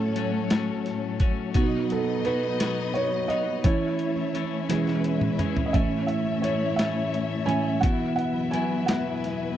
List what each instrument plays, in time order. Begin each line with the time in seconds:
Already playing: clean electric guitar A2 F#3 A3 C#4 F#4, felt piano A2 A3 C#4 A4, string section A2 F#3 A3 C#4 A4 C#5
0.16 clean electric guitar F#3 A3 C#4 F#4, closed hi-hat
0.50 clean electric guitar A2 F#3 A3 C#4 F#4, snare, closed hi-hat
0.86 snare, closed hi-hat
1.20 clean electric guitar A3 C#4 F#4, kick, closed hi-hat
1.54 clean electric guitar B2 F#3 B3 D#4 F#4, felt piano B2 F#3 D#4, string section B3 D#4 B4 D#5, kick, closed hi-hat
1.90 felt piano A4, closed hi-hat
2.24 clean electric guitar F#3 B3 D#4 F#4, felt piano B4, closed hi-hat
2.60 clean electric guitar B2 F#3 B3 D#4 F#4, snare, closed hi-hat
2.94 felt piano C#5, closed hi-hat
3.28 clean electric guitar B3 D#4 F#4, felt piano D#5, closed hi-hat
3.64 clean electric guitar E3 A3 C#4 E4, felt piano E3 C#4 E4 C#5, string section E3 A3 C#4 E4 C#5 E5, kick, closed hi-hat
3.99 closed hi-hat
4.34 clean electric guitar E3 A3 C#4 E4, closed hi-hat
4.69 clean electric guitar E2 B2 E3 G#3 C#4 E4, felt piano E3 G#3 C#4, string section G#3 E4 B4, snare, closed hi-hat
4.87 snare
5.04 closed hi-hat
5.21 mid tom
5.38 clean electric guitar E3 G#3 C#4 E4, closed hi-hat, mid tom
5.57 floor tom
5.66 felt piano D#5
5.73 clean electric guitar A2 E3 A3 C#4 E4, felt piano A2 E3 C#4 E5, string section A3 E4 C#5, kick, closed hi-hat
6.07 felt piano E5, closed hi-hat
6.42 clean electric guitar E3 A3 C#4, felt piano C#5, closed hi-hat
6.46 clean electric guitar E4
6.76 clean electric guitar E3 A3 C#4 E4, felt piano E5, snare, closed hi-hat
6.80 clean electric guitar A2
7.14 closed hi-hat
7.46 felt piano A2 E3 C#4 G#5, clean electric guitar C#4 E4, closed hi-hat
7.51 clean electric guitar A3
7.81 clean electric guitar E2 B2 E3 B3, felt piano E3 F#3 B3 F#5, string section F#3 B3 E4 B4, kick, closed hi-hat
7.85 clean electric guitar E4 F#4
8.16 felt piano F#5, closed hi-hat
8.51 clean electric guitar E3 B3 E4, felt piano G#5, closed hi-hat
8.55 clean electric guitar F#4
8.86 clean electric guitar E2 B2 E3 B3 E4 F#4, felt piano F#5, snare, closed hi-hat
9.24 snare, closed hi-hat